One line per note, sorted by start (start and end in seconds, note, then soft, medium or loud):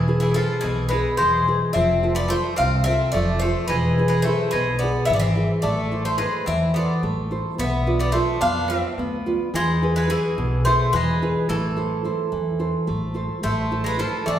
0.00 0.38 E1 loud
0.00 0.19 E3 medium
0.00 0.34 E3 medium
0.00 0.18 G#4 medium
0.08 0.34 E4 soft
0.08 0.35 G#4 soft
0.08 0.35 B4 medium
0.20 0.35 E3 medium
0.20 0.34 G#4 medium
0.34 0.62 F3 medium
0.34 0.80 E4 soft
0.34 0.81 G#4 soft
0.34 0.60 A4 medium
0.34 0.81 B4 medium
0.61 1.03 B1 medium
0.61 1.17 B2 medium
0.61 0.89 E3 medium
0.61 0.88 G#4 medium
0.89 1.17 G#3 medium
0.89 1.36 E4 medium
0.89 1.36 G#4 soft
0.89 1.17 B4 medium
0.93 1.37 B4 medium
1.17 1.59 E1 medium
1.17 1.74 E3 medium
1.17 1.57 G#3 medium
1.17 1.57 C5 medium
1.47 1.69 E4 medium
1.47 1.70 G#4 soft
1.47 1.70 B4 medium
1.73 2.33 F1 loud
1.73 2.29 F3 medium
1.73 2.13 C4 medium
1.73 2.13 E5 medium
2.03 2.29 F4 medium
2.03 2.30 A4 soft
2.03 2.31 C5 medium
2.15 2.28 B3 medium
2.15 2.29 D5 medium
2.28 2.55 A3 medium
2.28 2.75 F4 medium
2.28 2.75 A4 soft
2.28 2.56 C5 loud
2.28 2.76 C5 medium
2.56 2.98 C2 medium
2.56 3.12 C3 medium
2.56 2.83 C4 medium
2.56 2.83 F5 loud
2.84 3.12 C4 medium
2.84 3.31 F4 soft
2.84 3.31 A4 soft
2.84 3.32 C5 medium
2.84 3.11 E5 medium
3.12 3.53 F1 medium
3.12 3.68 F3 medium
3.12 3.40 A3 medium
3.12 3.39 D5 loud
3.39 3.67 A3 medium
3.39 3.65 F4 soft
3.39 3.66 C5 medium
3.44 3.65 A4 soft
3.44 3.65 C5 medium
3.68 4.28 E1 loud
3.68 4.24 E3 medium
3.68 4.08 G#3 medium
3.68 4.07 B4 medium
3.98 4.25 E4 soft
3.98 4.26 G#4 soft
3.98 4.26 B4 medium
4.08 4.23 G#3 medium
4.08 4.22 B4 medium
4.22 4.50 A3 medium
4.22 4.49 C5 medium
4.27 4.71 E4 soft
4.27 4.71 G#4 soft
4.27 4.71 B4 medium
4.51 4.92 B1 medium
4.51 5.08 B2 medium
4.51 4.79 G#3 medium
4.51 4.81 B4 medium
4.79 5.06 B3 medium
4.79 5.26 E4 soft
4.79 5.05 D5 medium
4.83 5.26 G#4 soft
4.83 5.27 B4 soft
5.05 5.47 G#1 medium
5.05 5.14 B3 medium
5.05 5.13 E5 medium
5.10 5.63 E3 medium
5.10 5.19 D5 medium
5.16 5.21 B3 medium
5.16 5.47 E5 medium
5.21 5.48 C4 medium
5.36 5.58 E4 soft
5.36 5.59 G#4 soft
5.36 5.59 B4 medium
5.62 6.23 A1 loud
5.62 6.02 A3 medium
5.62 6.18 A3 medium
5.62 6.02 D5 medium
5.92 6.18 E4 soft
5.92 6.19 A4 soft
5.92 6.19 C5 soft
6.05 6.18 A3 medium
6.05 6.18 C5 medium
6.18 6.45 G#3 medium
6.18 6.64 E4 soft
6.18 6.65 A4 soft
6.18 6.45 B4 medium
6.18 6.64 C5 soft
6.46 6.86 E2 medium
6.46 7.01 E3 medium
6.46 6.73 C4 medium
6.46 6.76 E5 medium
6.74 7.01 B3 medium
6.74 7.20 E4 soft
6.74 7.20 A4 soft
6.74 7.21 C5 soft
6.74 7.02 D5 medium
7.03 7.42 A1 medium
7.03 7.57 A3 medium
7.31 7.53 E4 soft
7.31 7.53 A4 soft
7.31 7.54 C5 medium
7.58 8.18 B1 loud
7.58 8.13 B3 medium
7.58 7.98 B3 medium
7.58 7.98 E5 medium
7.87 8.13 F4 soft
7.87 8.14 B4 soft
7.87 8.14 D5 medium
7.99 8.11 B3 medium
7.99 8.15 D5 medium
8.12 8.39 A3 medium
8.12 8.59 F4 soft
8.12 8.59 B4 soft
8.12 8.39 C5 medium
8.12 8.60 D5 medium
8.41 8.81 F2 medium
8.41 8.96 B3 medium
8.41 8.68 D4 medium
8.41 8.68 F5 loud
8.68 8.95 C4 medium
8.68 9.15 F4 soft
8.68 9.15 B4 soft
8.68 9.15 D5 medium
8.68 8.96 E5 medium
8.98 9.37 D2 medium
8.98 9.53 B3 medium
9.26 9.49 F4 soft
9.26 9.49 B4 soft
9.26 9.49 D5 medium
9.54 10.12 E2 loud
9.54 10.08 E3 medium
9.54 9.94 G#3 medium
9.54 9.94 C5 loud
9.82 10.08 E4 soft
9.82 10.08 G#4 soft
9.82 10.09 B4 medium
9.96 10.10 G#3 medium
9.96 10.09 B4 medium
10.09 10.62 E3 medium
10.09 10.54 E4 soft
10.09 10.62 G#4 medium
10.09 10.54 G#4 soft
10.09 10.55 B4 medium
10.38 10.77 B1 medium
10.38 10.92 B2 medium
10.65 10.92 A3 medium
10.65 11.10 E4 soft
10.65 11.10 G#4 soft
10.65 11.11 B4 soft
10.65 10.91 C5 medium
10.93 11.33 E2 medium
10.93 11.48 E3 medium
10.93 11.46 G#3 medium
10.93 11.45 B4 medium
11.22 11.44 E4 soft
11.22 11.44 G#4 soft
11.22 11.45 B4 medium
11.49 12.08 A1 loud
11.49 12.85 E3 medium
11.49 12.03 A3 medium
11.49 12.85 A4 medium
11.76 12.03 E4 soft
11.76 12.04 A4 soft
11.76 12.04 C5 medium
12.04 12.49 E4 soft
12.04 12.50 A4 soft
12.04 12.50 C5 medium
12.32 12.72 E2 medium
12.32 12.86 E3 medium
12.59 13.04 E4 soft
12.59 13.05 A4 soft
12.59 13.05 C5 medium
12.87 13.28 A1 medium
12.87 13.42 A3 medium
13.14 13.37 E4 soft
13.14 13.38 A4 soft
13.14 13.38 C5 soft
13.43 14.03 A1 loud
13.43 13.98 A3 medium
13.43 13.83 A3 medium
13.43 13.83 C5 medium
13.71 13.98 E4 soft
13.71 13.98 A4 soft
13.71 13.98 C5 medium
13.84 13.98 G#3 medium
13.84 13.99 B4 medium
13.99 14.26 F3 medium
13.99 14.39 E4 soft
13.99 14.26 A4 medium
13.99 14.39 A4 soft
13.99 14.39 C5 medium
14.26 14.39 E2 medium
14.26 14.39 E3 medium
14.26 14.39 A3 medium
14.26 14.39 D5 medium